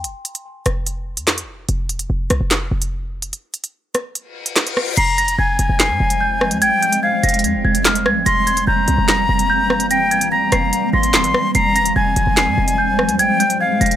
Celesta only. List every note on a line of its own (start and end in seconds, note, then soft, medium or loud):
4.97 5.16 C7 loud
5.18 5.37 A#6 medium
5.39 5.77 G#6 medium
5.80 6.18 C7 medium
6.21 6.59 G6 medium
6.62 6.80 G#6 loud
6.82 7.01 G6 medium
7.03 7.21 G#6 medium
7.23 7.62 A#6 medium
7.65 7.83 G#6 medium
7.85 8.03 F6 medium
8.06 8.24 G#6 medium
8.26 8.45 A#6 loud
8.47 8.65 G#6 medium
8.67 9.06 G6 medium
9.09 9.47 A#6 medium
9.50 9.88 G6 medium
9.91 10.09 A#6 loud
10.11 10.30 G#6 medium
10.32 10.50 A#6 medium
10.52 10.91 C7 medium
10.93 11.12 A#6 medium
11.14 11.32 C7 medium
11.55 11.73 C7 loud
11.76 11.94 A#6 medium
11.96 12.35 G#6 medium
12.37 12.76 C7 medium
12.78 13.17 G6 medium
13.19 13.38 G#6 loud
13.40 13.58 G6 medium
13.60 13.79 G#6 medium
13.81 13.96 A#6 medium